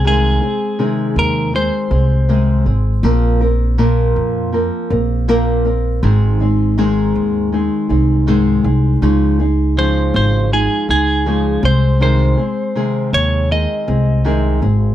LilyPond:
<<
  \new Staff \with { instrumentName = "Clean electric guitar" } { \time 4/4 \key aes \mixolydian \tempo 4 = 80 aes'4. bes'8 c''4. r8 | r1 | r1 | r4 c''8 c''8 aes'8 aes'4 c''8 |
c''4. des''8 ees''4. r8 | }
  \new Staff \with { instrumentName = "Nylon-string guitar" } { \time 4/4 \key aes \mixolydian <c ees aes c' aes'>8 <aes c' aes'>8 <c ees aes c' aes'>4 <ees aes c' aes'>8 <aes c' aes'>8 <c ees aes c' aes'>8 <aes c' aes'>8 | <bes, f bes c' bes'>8 <bes c' bes'>8 <bes, f bes c' bes'>4 <f bes c' bes'>8 <bes c' bes'>8 <bes, f bes c' bes'>8 <bes c' bes'>8 | <aes, ees aes c' ees' aes'>8 <aes c' ees' aes'>8 <aes, ees aes c' ees' aes'>4 <aes c' ees' aes'>8 <aes c' ees' aes'>8 <aes, ees aes c' ees' aes'>8 <aes c' ees' aes'>8 | <des f aes ees' aes'>8 <aes ees' aes'>8 <des f aes ees' aes'>4 <f aes ees' aes'>8 <aes ees' aes'>8 <des f aes ees' aes'>8 <aes c' aes'>8 |
<c ees aes c' aes'>8 <aes c' aes'>8 <c ees aes aes'>4 <ees aes c' aes'>8 <aes c' aes'>8 <c ees aes c' aes'>8 <aes c' aes'>8 | }
  \new Staff \with { instrumentName = "Upright bass" } { \clef bass \time 4/4 \key aes \mixolydian c,8 r4 ees,8. r16 c,4 aes,,8 | bes,,4. f,8. r16 bes,,4. | aes,,4. ees,8. r16 c,4 c,8 | des,4. aes,,8. r16 des,4 c,8~ |
c,8 r4 ees,8. r16 c,4 aes,,8 | }
>>